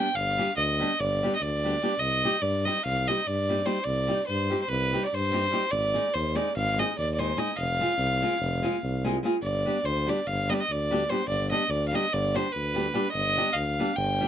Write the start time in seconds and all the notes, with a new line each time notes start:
Already playing: G5
0.14 G1 F5
0.38 G3 B3 D4 G4
0.57 D2 D#5
0.79 G3 B3 D4 G4
0.99 G1 D5
1.23 G3 B3 D4 G4
1.35 D#5
1.41 D2 D5
1.64 G3 B3 D4 G4
1.82 G3 B3 D4 G4
1.99 C2 D#5
2.23 G3 C4 D#4 G4
2.41 G2 D5
2.65 G3 C4 D#4 G4 D#5
2.85 C2 F5
3.08 G3 C4 D#4 G4 D#5
3.26 G2 D5
3.49 G3 C4 D#4 G4
3.65 G3 C4 D#4 G4 C5
3.84 C2 D5
4.08 G3 C4 D#4 G4
4.27 G2 C5
4.50 G3 C4 D#4 G4
4.62 C5
4.69 C2 B4
4.93 G3 C4 D#4 G4
5.05 D5
5.13 G2 C5
5.32 G3 C4 D#4 G4
5.51 G3 C4 D#4 G4
5.71 G#1 D5
5.94 G#3 C4 D#4 G#4
6.14 D#2 C5
6.35 G#3 C4 D#4 G#4 D5
6.56 G#1 F5
6.78 G#3 C4 D#4 G#4 D#5
6.98 D#2 D5
7.14 D5
7.18 G#3 C4 D#4 G#4 C5
7.37 G#3 C4 D#4 G#4 D#5
7.57 F1 F5
7.79 G#3 C4 F4 G#4
7.98 C2
8.22 G#3 C4 F4 G#4
8.40 F1
8.63 G#3 C4 F4 G#4
8.83 C2
9.04 G#3 C4 F4 G#4
9.23 G#3 C4 F4 G#4
9.41 G1 D5
9.65 G3 B3 D4 G4
9.84 D2 C5
10.06 G3 B3 D4 G4 D5
10.26 G1 F5
10.49 G3 B3 D4 G4 D#5
10.54 D5
10.60 D#5
10.69 D2 D5
10.91 G3 B3 D4 G4
11.09 G3 B3 D4 G4 C5
11.27 G1 D5
11.51 G3 B3 D4 G4 D#5
11.69 D2 D5
11.88 F5
11.92 G3 B3 D4 G4 D#5
12.13 G1 D5
12.34 G3 B3 D4 G4 C5
12.51 D2 B4
12.74 G3 B3 D4 G4
12.94 G3 B3 D4 G4
13.11 G1 D#5
13.36 G3 B3 D4 G4
13.53 D2 F5
13.79 G3 B3 D4 G4
13.96 G1 G5
14.20 G3 B3 D4 G4